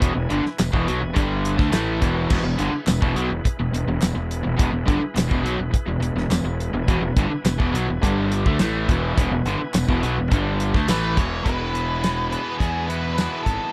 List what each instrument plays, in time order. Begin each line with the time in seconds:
0.00 fingered electric bass E1, overdriven electric guitar E2 B2, tonewheel organ E4 B4 G#5, kick, closed hi-hat
0.14 fingered electric bass E1, overdriven electric guitar E2 B2
0.29 fingered electric bass G1, overdriven electric guitar G2 D3, closed hi-hat
0.45 muted overdriven electric guitar stroke, muted fingered electric bass stroke, snare
0.59 fingered electric bass E1, overdriven electric guitar E2 B2, snare, clap, closed hi-hat, tambourine
0.73 fingered electric bass E1, overdriven electric guitar E2 B2, kick
0.86 fingered electric bass B1, overdriven electric guitar B2 F#3, closed hi-hat
1.00 fingered electric bass E1, overdriven electric guitar E2 B2
1.14 fingered electric bass G1, overdriven electric guitar G2 D3 G3, kick, closed hi-hat
1.45 closed hi-hat
1.57 fingered electric bass D2, overdriven electric guitar D3 A3, kick, snare
1.71 fingered electric bass A1, overdriven electric guitar A2 E3 A3, snare, clap, closed hi-hat, tambourine
2.02 fingered electric bass E1, overdriven electric guitar E2 B2 E3, kick, closed hi-hat
2.29 fingered electric bass E1, overdriven electric guitar E2 B2, tonewheel organ E4 G#4 B4, kick, crash
2.43 fingered electric bass E1, overdriven electric guitar E2 B2
2.58 fingered electric bass G1, overdriven electric guitar G2 D3, closed hi-hat
2.73 muted overdriven electric guitar stroke, muted fingered electric bass stroke
2.87 fingered electric bass E1, overdriven electric guitar E2 B2, snare, clap, closed hi-hat, tambourine
3.01 fingered electric bass E1, overdriven electric guitar E2 B2, kick
3.15 fingered electric bass B1, overdriven electric guitar B2 F#3, closed hi-hat
3.30 fingered electric bass E1, overdriven electric guitar E2 B2
3.45 muted fingered electric bass stroke, muted overdriven electric guitar stroke, kick, closed hi-hat
3.59 fingered electric bass E1, overdriven electric guitar E2 B2
3.74 fingered electric bass E1, overdriven electric guitar E2 B2, closed hi-hat
3.88 fingered electric bass E1, overdriven electric guitar E2 B2
4.01 fingered electric bass E1, overdriven electric guitar E2 B2, snare, clap, closed hi-hat, tambourine
4.15 fingered electric bass E1, overdriven electric guitar E2 B2
4.31 closed hi-hat
4.43 fingered electric bass E1, overdriven electric guitar E2 B2
4.57 fingered electric bass E1, overdriven electric guitar E2 B2, tonewheel organ E4 G#4 B4, kick, closed hi-hat
4.72 fingered electric bass E1, overdriven electric guitar E2 B2
4.86 fingered electric bass G1, overdriven electric guitar G2 D3, kick, closed hi-hat
5.00 muted overdriven electric guitar stroke, muted fingered electric bass stroke
5.14 fingered electric bass E1, overdriven electric guitar E2 B2, snare, clap, closed hi-hat, tambourine
5.28 fingered electric bass E1, overdriven electric guitar E2 B2, kick
5.42 fingered electric bass B1, overdriven electric guitar B2 F#3, closed hi-hat
5.57 fingered electric bass E1, overdriven electric guitar E2 B2
5.72 muted overdriven electric guitar stroke, muted fingered electric bass stroke, kick, closed hi-hat
5.86 fingered electric bass E1, overdriven electric guitar E2 B2
6.00 fingered electric bass E1, overdriven electric guitar E2 B2, closed hi-hat
6.15 fingered electric bass E1, overdriven electric guitar E2 B2, snare
6.30 fingered electric bass E1, overdriven electric guitar E2 B2, snare, clap, closed hi-hat, tambourine
6.44 fingered electric bass E1, overdriven electric guitar E2 B2
6.60 closed hi-hat
6.73 fingered electric bass E1, overdriven electric guitar E2 B2
6.83 tonewheel organ B3 E4 B4 G#5
6.87 fingered electric bass E1, overdriven electric guitar E2 B2, kick, closed hi-hat
7.02 fingered electric bass E1, overdriven electric guitar E2 B2
7.16 fingered electric bass G1, overdriven electric guitar G2 D3, kick, closed hi-hat
7.31 muted fingered electric bass stroke, muted overdriven electric guitar stroke
7.44 fingered electric bass E1, overdriven electric guitar E2 B2, snare, clap, closed hi-hat, tambourine
7.58 fingered electric bass E1, overdriven electric guitar E2 B2, kick
7.72 fingered electric bass B1, overdriven electric guitar B2 F#3, closed hi-hat
7.87 fingered electric bass E1, overdriven electric guitar E2 B2
8.02 fingered electric bass G1, overdriven electric guitar G2 D3 G3, kick, closed hi-hat
8.32 closed hi-hat
8.45 fingered electric bass D2, overdriven electric guitar D3 A3, kick
8.59 fingered electric bass A1, overdriven electric guitar A2 E3 A3, snare, clap, closed hi-hat, tambourine
8.89 fingered electric bass E1, overdriven electric guitar E2 B2 E3, kick, closed hi-hat
9.17 fingered electric bass E1, overdriven electric guitar E2 B2, tonewheel organ B3 E4 B4 G#5, kick, closed hi-hat
9.31 fingered electric bass E1, overdriven electric guitar E2 B2
9.45 fingered electric bass G1, overdriven electric guitar G2 D3, closed hi-hat
9.61 muted fingered electric bass stroke, muted overdriven electric guitar stroke
9.74 fingered electric bass E1, overdriven electric guitar E2 B2, snare, clap, closed hi-hat, tambourine
9.88 fingered electric bass E1, overdriven electric guitar E2 B2, kick
10.03 fingered electric bass B1, overdriven electric guitar B2 F#3, closed hi-hat
10.18 fingered electric bass E1, overdriven electric guitar E2 B2
10.31 fingered electric bass G1, overdriven electric guitar G2 D3 G3, kick, closed hi-hat
10.60 closed hi-hat
10.74 fingered electric bass D2, overdriven electric guitar D3 A3, kick, snare
10.88 fingered electric bass A1, overdriven electric guitar A2 E3 A3, lead electric guitar B4, snare, clap, closed hi-hat, tambourine
11.16 fingered electric bass E1, overdriven electric guitar E2 B2 E3, lead electric guitar C#5, kick, closed hi-hat
11.43 fingered electric bass E1, overdriven electric guitar E2 B2 E3 G#3 B3 E4, lead electric guitar B4, kick, closed hi-hat
11.73 overdriven electric guitar E2 B2 E3 G#3 B3 E4, closed hi-hat
12.01 overdriven electric guitar E2 B2 E3 G#3 B3 E4, snare, closed hi-hat, tambourine
12.30 overdriven electric guitar E2 B2 E3 G#3 B3 E4, lead electric guitar B4, closed hi-hat
12.58 overdriven electric guitar E2 B2 E3 G#3 B3 E4, fingered electric bass E2, lead electric guitar G#4, kick, closed hi-hat
12.87 overdriven electric guitar E2 B2 E3 G#3 B3 E4, lead electric guitar B4, closed hi-hat
13.13 overdriven electric guitar E2, lead electric guitar B4
13.18 overdriven electric guitar B2 E3 G#3 B3 E4, snare, closed hi-hat, tambourine
13.43 fingered electric bass G#1, overdriven electric guitar E2 B2, lead electric guitar A4, kick, closed hi-hat
13.47 overdriven electric guitar E3 G#3 B3 E4